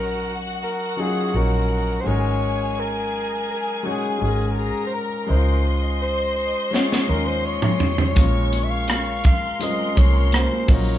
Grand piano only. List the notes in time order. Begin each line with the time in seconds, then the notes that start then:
Already playing: F#3 C#4 D#4 F#4 A#4
0.96 F#3 C#4 D#4 F4 G#4
1.33 F#3 C#4 D#4 F#4 C#5
2.04 G#3 C#4 D#4 F#4 A#4
3.83 G#3 C#4 D#4 F#4 C#5
4.18 G#3 C#4 D#4 F#4 G#4
4.28 A#4
5.26 G#3 C#4 D#4 E4 C5
5.35 F4
6.71 G#3 C#4 D#4 F4 C#5
7.07 G#3 C#4 D#4 F4 C#5
8.15 G#3 A#3 C#4 F4 A#4
9.59 G#3 C4 C#4 F4 A#4
9.95 G#3 A#3 C#4 F4 A#4
10.67 F#3 C#4 D#4 F4 A#4